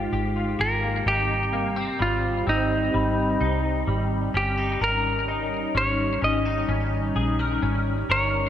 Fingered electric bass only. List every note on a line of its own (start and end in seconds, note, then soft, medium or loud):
0.12 0.54 G#1 medium
0.60 1.01 G#1 medium
1.06 1.89 G#1 loud
2.00 2.41 G#1 medium
2.47 2.88 G#1 loud
2.94 3.35 G#1 loud
3.41 3.82 C2 medium
3.87 4.29 G#1 loud
4.34 4.75 G1 medium
4.81 5.64 G#1 medium
5.75 6.16 G#1 loud
6.22 6.63 G#1 medium
6.68 7.10 G#1 loud
7.16 7.57 A#1 medium
7.62 8.04 G#1 loud
8.09 8.49 G1 medium